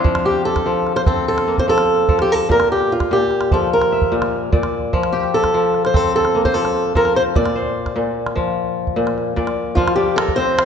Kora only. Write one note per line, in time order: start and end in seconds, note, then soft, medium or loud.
0.00 1.06 C4 medium
0.00 1.42 D4 medium
0.00 0.10 E4 medium
0.00 1.45 F4 medium
0.00 0.11 C5 medium
0.00 0.14 D5 medium
0.04 0.65 F3 medium
0.25 1.66 G4 medium
0.66 1.66 F3 medium
1.07 2.87 C4 medium
1.47 2.15 A#3 medium
1.68 2.07 F3 medium
2.09 2.54 F3 medium
2.09 3.17 A4 medium
2.49 3.10 A#2 medium
3.11 4.11 A#2 medium
3.52 4.92 F3 medium
3.92 4.99 E5 medium
4.12 4.51 A#2 medium
4.52 4.98 A#2 medium
4.52 5.63 D5 medium
4.93 5.53 F3 medium
5.13 6.54 G4 medium
5.54 6.54 F3 medium
5.94 7.74 C4 medium
6.35 7.01 A#3 medium
6.55 6.94 F3 medium
6.95 7.41 F3 medium
6.95 8.02 A4 medium
7.36 7.94 A#2 medium
7.55 8.74 C5 medium
7.96 8.95 A#2 medium
8.36 9.76 F3 medium
8.96 9.35 A#2 medium
9.36 9.82 A#2 medium
9.36 9.97 D5 medium
9.77 10.65 F3 medium
9.97 10.65 D5 medium
10.18 10.65 A#4 medium
10.37 10.65 C4 medium
10.58 10.65 C5 medium